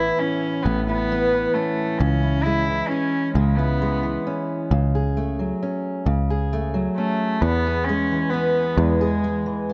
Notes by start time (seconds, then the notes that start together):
Already playing: A1 A2 E3 B3 E4
0.19 C#4
0.63 A1 A2 B3
0.87 B3 E4
1.12 B3
1.33 E3
1.54 A3 C#4
1.98 C#2 C#3 C#4
2.23 E4
2.43 G#3 E4
2.69 E3
2.88 C#4
3.34 C#2 C#3 G#3
3.57 B3 E4
3.82 G#3
4.03 E3
4.27 C#4
4.71 C#2 C#3
4.95 G#4
5.17 A3
5.39 F#3
5.63 C#4
6.06 C#2 C#3
6.30 G#4
6.53 A3
6.74 F#3
6.97 A3 C#4
7.41 E2 B3
7.67 G#4
7.85 C#4
7.89 G#3
8.12 E3
8.30 B3
8.76 E2 G#3
9.01 G#4
9.24 G#3
9.46 E3
9.69 B3